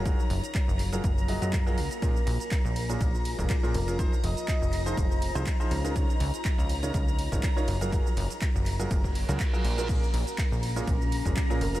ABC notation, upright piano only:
X:1
M:4/4
L:1/16
Q:"Swing 16ths" 1/4=122
K:Bbm
V:1 name="Upright piano"
[G,FGAB] z6 [G,FGAB] z2 [G,FGAe] [G,FGAe] z [G,FGAB] z2 | [B,,DFAB] z6 [B,,DFAB] z3 [B,,DFAB] z [B,,DFAB] z [DFAB] | [F,EFAc] z6 [F,EFAc] z3 [F,EFAc] z [F,EFAc] z [D,EFAB] | [D,EFBd] z6 [D,EFBd] z3 [D,EFBd] z [EFBd] z [G,FGAB] |
[G,FGAB] z6 [G,FGAB] z3 [G,FGAB] z [G,FGAB] z [B,FGAB] | [B,,DFAB] z6 [B,,DFAB] z3 [B,,DFAB] z [B,,DFAB] z [DFAB] |]